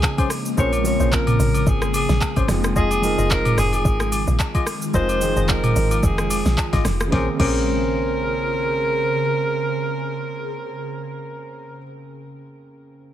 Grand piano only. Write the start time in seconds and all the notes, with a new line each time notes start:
Already playing: F3 A#3 C4 C#4 D#4 G#4
0.56 F3 A#3 C4 C#4 A#4
0.84 F3 A#3 C4 C#4 A#4
2.48 F3 G#3 C4 D#4 G#4
3.02 F3 G#3 C4 D#4 A#4
4.93 F3 G#3 C4 D#4 A#4
5.20 F3 G#3 C4 D#4 G#4
7.07 C#3 A#3
7.14 C4 G#4
7.35 C#3 A#3
7.41 C4 G#4